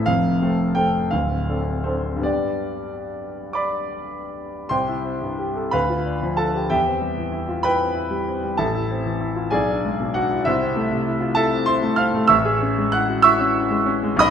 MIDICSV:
0, 0, Header, 1, 2, 480
1, 0, Start_track
1, 0, Key_signature, 0, "major"
1, 0, Tempo, 698487
1, 52, Time_signature, 6, 3, 24, 8
1, 1013, Tempo, 765306
1, 1493, Tempo, 891530
1, 1973, Tempo, 829876
1, 2453, Tempo, 760456
1, 2933, Tempo, 677966
1, 3413, Tempo, 647948
1, 4853, Tempo, 621118
1, 8693, Tempo, 635593
1, 10196, End_track
2, 0, Start_track
2, 0, Title_t, "Grand piano"
2, 0, Program_c, 0, 0
2, 0, Control_c, 0, 64, 127
2, 0, Note_on_c, 0, 45, 63
2, 39, Note_on_c, 0, 77, 91
2, 47, Note_on_c, 0, 29, 55
2, 48, Note_on_c, 0, 41, 55
2, 61, Control_c, 0, 64, 0
2, 69, Note_off_c, 0, 45, 0
2, 180, Control_c, 0, 64, 127
2, 273, Note_off_c, 0, 29, 0
2, 274, Note_off_c, 0, 41, 0
2, 288, Note_on_c, 0, 57, 43
2, 290, Note_on_c, 0, 60, 46
2, 293, Note_on_c, 0, 69, 47
2, 498, Note_off_c, 0, 57, 0
2, 500, Note_off_c, 0, 60, 0
2, 501, Note_off_c, 0, 69, 0
2, 513, Note_off_c, 0, 77, 0
2, 514, Note_on_c, 0, 79, 82
2, 521, Note_on_c, 0, 57, 41
2, 523, Note_on_c, 0, 60, 39
2, 525, Note_on_c, 0, 69, 39
2, 741, Note_off_c, 0, 57, 0
2, 742, Note_off_c, 0, 60, 0
2, 743, Note_off_c, 0, 69, 0
2, 760, Note_on_c, 0, 77, 73
2, 762, Note_off_c, 0, 79, 0
2, 771, Note_on_c, 0, 38, 51
2, 772, Note_on_c, 0, 26, 48
2, 776, Control_c, 0, 64, 0
2, 914, Control_c, 0, 64, 127
2, 1009, Note_off_c, 0, 26, 0
2, 1009, Note_off_c, 0, 38, 0
2, 1016, Note_on_c, 0, 60, 34
2, 1020, Note_on_c, 0, 62, 31
2, 1024, Note_on_c, 0, 69, 38
2, 1223, Note_off_c, 0, 60, 0
2, 1225, Note_off_c, 0, 62, 0
2, 1227, Note_off_c, 0, 69, 0
2, 1240, Note_on_c, 0, 72, 57
2, 1243, Note_off_c, 0, 77, 0
2, 1248, Note_on_c, 0, 60, 33
2, 1248, Note_on_c, 0, 62, 35
2, 1250, Note_on_c, 0, 69, 39
2, 1443, Note_on_c, 0, 43, 47
2, 1470, Note_off_c, 0, 60, 0
2, 1470, Note_off_c, 0, 62, 0
2, 1470, Note_off_c, 0, 69, 0
2, 1473, Note_on_c, 0, 59, 37
2, 1482, Note_on_c, 0, 62, 35
2, 1486, Note_on_c, 0, 67, 33
2, 1488, Note_on_c, 0, 74, 66
2, 1490, Note_off_c, 0, 72, 0
2, 1503, Control_c, 0, 64, 0
2, 1599, Control_c, 0, 64, 127
2, 2205, Note_off_c, 0, 74, 0
2, 2206, Note_on_c, 0, 86, 66
2, 2214, Note_on_c, 0, 74, 56
2, 2216, Note_on_c, 0, 83, 53
2, 2882, Note_off_c, 0, 43, 0
2, 2897, Note_off_c, 0, 59, 0
2, 2901, Note_off_c, 0, 62, 0
2, 2902, Note_off_c, 0, 74, 0
2, 2903, Note_off_c, 0, 67, 0
2, 2903, Note_off_c, 0, 83, 0
2, 2915, Note_on_c, 0, 84, 73
2, 2922, Note_on_c, 0, 36, 53
2, 2922, Note_on_c, 0, 79, 62
2, 2923, Note_off_c, 0, 86, 0
2, 2924, Note_on_c, 0, 72, 59
2, 2943, Control_c, 0, 64, 0
2, 3043, Note_on_c, 0, 64, 49
2, 3050, Control_c, 0, 64, 127
2, 3157, Note_on_c, 0, 60, 45
2, 3240, Note_off_c, 0, 64, 0
2, 3285, Note_on_c, 0, 43, 40
2, 3357, Note_off_c, 0, 60, 0
2, 3406, Note_on_c, 0, 67, 43
2, 3483, Note_off_c, 0, 43, 0
2, 3530, Note_on_c, 0, 69, 37
2, 3608, Note_off_c, 0, 67, 0
2, 3625, Note_off_c, 0, 79, 0
2, 3626, Note_off_c, 0, 72, 0
2, 3632, Note_off_c, 0, 36, 0
2, 3646, Note_on_c, 0, 83, 78
2, 3650, Note_off_c, 0, 84, 0
2, 3655, Note_on_c, 0, 71, 65
2, 3657, Note_off_c, 0, 69, 0
2, 3658, Note_on_c, 0, 77, 60
2, 3660, Note_on_c, 0, 38, 57
2, 3674, Control_c, 0, 64, 0
2, 3779, Note_on_c, 0, 65, 40
2, 3789, Control_c, 0, 64, 127
2, 3896, Note_on_c, 0, 62, 40
2, 3976, Note_off_c, 0, 65, 0
2, 4020, Note_on_c, 0, 53, 43
2, 4094, Note_off_c, 0, 62, 0
2, 4114, Note_off_c, 0, 71, 0
2, 4116, Note_off_c, 0, 77, 0
2, 4131, Note_on_c, 0, 81, 71
2, 4134, Note_on_c, 0, 69, 57
2, 4137, Note_on_c, 0, 65, 39
2, 4140, Note_off_c, 0, 83, 0
2, 4216, Note_off_c, 0, 53, 0
2, 4264, Note_on_c, 0, 67, 38
2, 4333, Note_off_c, 0, 65, 0
2, 4362, Note_off_c, 0, 69, 0
2, 4364, Note_off_c, 0, 38, 0
2, 4368, Note_off_c, 0, 67, 0
2, 4375, Note_on_c, 0, 79, 84
2, 4378, Note_off_c, 0, 81, 0
2, 4379, Note_on_c, 0, 67, 59
2, 4380, Note_on_c, 0, 76, 61
2, 4381, Note_on_c, 0, 40, 58
2, 4397, Control_c, 0, 64, 0
2, 4495, Note_on_c, 0, 60, 48
2, 4509, Control_c, 0, 64, 127
2, 4607, Note_on_c, 0, 55, 45
2, 4685, Note_off_c, 0, 60, 0
2, 4730, Note_on_c, 0, 52, 40
2, 4799, Note_off_c, 0, 55, 0
2, 4837, Note_on_c, 0, 64, 43
2, 4921, Note_off_c, 0, 52, 0
2, 4964, Note_on_c, 0, 65, 41
2, 5037, Note_off_c, 0, 64, 0
2, 5059, Note_off_c, 0, 67, 0
2, 5059, Note_off_c, 0, 76, 0
2, 5075, Note_on_c, 0, 83, 86
2, 5076, Note_off_c, 0, 79, 0
2, 5085, Note_on_c, 0, 71, 70
2, 5087, Note_on_c, 0, 79, 67
2, 5088, Note_on_c, 0, 64, 46
2, 5089, Note_off_c, 0, 65, 0
2, 5207, Note_on_c, 0, 60, 38
2, 5285, Note_off_c, 0, 64, 0
2, 5319, Note_on_c, 0, 64, 43
2, 5406, Note_off_c, 0, 60, 0
2, 5442, Note_on_c, 0, 55, 43
2, 5523, Note_off_c, 0, 64, 0
2, 5573, Note_on_c, 0, 60, 45
2, 5645, Note_off_c, 0, 55, 0
2, 5694, Note_on_c, 0, 55, 46
2, 5771, Note_off_c, 0, 60, 0
2, 5788, Note_off_c, 0, 71, 0
2, 5789, Note_off_c, 0, 40, 0
2, 5789, Note_off_c, 0, 79, 0
2, 5804, Note_on_c, 0, 81, 72
2, 5810, Note_on_c, 0, 33, 58
2, 5811, Note_on_c, 0, 69, 52
2, 5813, Note_on_c, 0, 76, 53
2, 5814, Note_off_c, 0, 83, 0
2, 5818, Note_off_c, 0, 55, 0
2, 5837, Control_c, 0, 64, 0
2, 5934, Note_on_c, 0, 64, 50
2, 5959, Control_c, 0, 64, 127
2, 6061, Note_on_c, 0, 60, 50
2, 6129, Note_off_c, 0, 64, 0
2, 6179, Note_on_c, 0, 52, 45
2, 6252, Note_off_c, 0, 60, 0
2, 6293, Note_on_c, 0, 64, 52
2, 6371, Note_off_c, 0, 52, 0
2, 6411, Note_on_c, 0, 65, 38
2, 6488, Note_off_c, 0, 64, 0
2, 6503, Note_off_c, 0, 69, 0
2, 6504, Note_off_c, 0, 76, 0
2, 6512, Note_off_c, 0, 33, 0
2, 6524, Note_on_c, 0, 80, 78
2, 6531, Note_off_c, 0, 81, 0
2, 6532, Note_on_c, 0, 68, 61
2, 6532, Note_on_c, 0, 74, 69
2, 6534, Note_on_c, 0, 35, 60
2, 6536, Note_off_c, 0, 65, 0
2, 6554, Control_c, 0, 64, 0
2, 6654, Control_c, 0, 64, 127
2, 6662, Note_on_c, 0, 62, 46
2, 6782, Note_on_c, 0, 56, 46
2, 6857, Note_off_c, 0, 62, 0
2, 6902, Note_on_c, 0, 47, 44
2, 6978, Note_off_c, 0, 56, 0
2, 6992, Note_off_c, 0, 68, 0
2, 6992, Note_off_c, 0, 74, 0
2, 7015, Note_on_c, 0, 78, 83
2, 7018, Note_off_c, 0, 80, 0
2, 7025, Note_on_c, 0, 66, 59
2, 7026, Note_on_c, 0, 62, 51
2, 7097, Note_off_c, 0, 47, 0
2, 7146, Note_on_c, 0, 64, 44
2, 7217, Note_off_c, 0, 62, 0
2, 7239, Note_off_c, 0, 35, 0
2, 7247, Note_off_c, 0, 66, 0
2, 7250, Note_off_c, 0, 64, 0
2, 7254, Note_on_c, 0, 76, 92
2, 7258, Note_off_c, 0, 78, 0
2, 7262, Note_on_c, 0, 64, 68
2, 7267, Note_on_c, 0, 36, 67
2, 7268, Note_on_c, 0, 72, 67
2, 7275, Control_c, 0, 64, 0
2, 7368, Control_c, 0, 64, 127
2, 7375, Note_on_c, 0, 60, 55
2, 7494, Note_on_c, 0, 57, 53
2, 7563, Note_off_c, 0, 60, 0
2, 7610, Note_on_c, 0, 48, 48
2, 7682, Note_off_c, 0, 57, 0
2, 7720, Note_off_c, 0, 64, 0
2, 7732, Note_on_c, 0, 64, 53
2, 7801, Note_off_c, 0, 48, 0
2, 7836, Note_on_c, 0, 65, 44
2, 7922, Note_off_c, 0, 64, 0
2, 7940, Note_off_c, 0, 72, 0
2, 7947, Note_off_c, 0, 76, 0
2, 7947, Note_on_c, 0, 81, 92
2, 7956, Note_on_c, 0, 64, 57
2, 7959, Note_on_c, 0, 69, 75
2, 7959, Note_on_c, 0, 76, 66
2, 7962, Note_off_c, 0, 65, 0
2, 8083, Note_on_c, 0, 60, 43
2, 8154, Note_off_c, 0, 64, 0
2, 8186, Note_off_c, 0, 69, 0
2, 8186, Note_off_c, 0, 76, 0
2, 8188, Note_on_c, 0, 84, 95
2, 8198, Note_off_c, 0, 81, 0
2, 8199, Note_on_c, 0, 64, 56
2, 8200, Note_on_c, 0, 72, 69
2, 8278, Note_off_c, 0, 60, 0
2, 8318, Note_on_c, 0, 57, 51
2, 8395, Note_off_c, 0, 64, 0
2, 8423, Note_on_c, 0, 89, 88
2, 8427, Note_off_c, 0, 72, 0
2, 8433, Note_on_c, 0, 77, 80
2, 8435, Note_on_c, 0, 60, 55
2, 8438, Note_off_c, 0, 84, 0
2, 8515, Note_off_c, 0, 57, 0
2, 8560, Note_on_c, 0, 57, 62
2, 8635, Note_off_c, 0, 60, 0
2, 8661, Note_off_c, 0, 36, 0
2, 8664, Note_on_c, 0, 88, 103
2, 8666, Note_off_c, 0, 77, 0
2, 8672, Note_on_c, 0, 85, 70
2, 8675, Note_on_c, 0, 33, 73
2, 8676, Note_on_c, 0, 76, 77
2, 8678, Note_off_c, 0, 89, 0
2, 8686, Note_off_c, 0, 57, 0
2, 8705, Control_c, 0, 64, 0
2, 8799, Note_on_c, 0, 68, 61
2, 8838, Control_c, 0, 64, 127
2, 8918, Note_on_c, 0, 61, 56
2, 8997, Note_off_c, 0, 68, 0
2, 9047, Note_on_c, 0, 56, 57
2, 9116, Note_off_c, 0, 61, 0
2, 9131, Note_off_c, 0, 85, 0
2, 9132, Note_off_c, 0, 76, 0
2, 9152, Note_on_c, 0, 90, 99
2, 9157, Note_off_c, 0, 88, 0
2, 9161, Note_on_c, 0, 78, 69
2, 9162, Note_on_c, 0, 64, 53
2, 9238, Note_off_c, 0, 56, 0
2, 9279, Note_on_c, 0, 66, 51
2, 9354, Note_off_c, 0, 64, 0
2, 9382, Note_on_c, 0, 88, 111
2, 9384, Note_off_c, 0, 78, 0
2, 9390, Note_on_c, 0, 64, 60
2, 9393, Note_on_c, 0, 76, 90
2, 9393, Note_on_c, 0, 85, 86
2, 9396, Note_off_c, 0, 90, 0
2, 9401, Note_off_c, 0, 66, 0
2, 9513, Note_on_c, 0, 61, 53
2, 9584, Note_off_c, 0, 64, 0
2, 9624, Note_on_c, 0, 64, 57
2, 9704, Note_off_c, 0, 61, 0
2, 9744, Note_on_c, 0, 56, 58
2, 9821, Note_off_c, 0, 64, 0
2, 9862, Note_on_c, 0, 61, 61
2, 9945, Note_off_c, 0, 56, 0
2, 9993, Note_on_c, 0, 56, 64
2, 10068, Note_off_c, 0, 61, 0
2, 10089, Note_off_c, 0, 33, 0
2, 10090, Note_off_c, 0, 76, 0
2, 10090, Note_off_c, 0, 85, 0
2, 10092, Note_on_c, 0, 35, 84
2, 10112, Note_on_c, 0, 87, 118
2, 10115, Note_off_c, 0, 88, 0
2, 10120, Note_on_c, 0, 83, 94
2, 10123, Note_off_c, 0, 56, 0
2, 10123, Note_on_c, 0, 75, 101
2, 10139, Control_c, 0, 64, 0
2, 10196, Note_off_c, 0, 35, 0
2, 10196, Note_off_c, 0, 75, 0
2, 10196, Note_off_c, 0, 83, 0
2, 10196, Note_off_c, 0, 87, 0
2, 10196, End_track
0, 0, End_of_file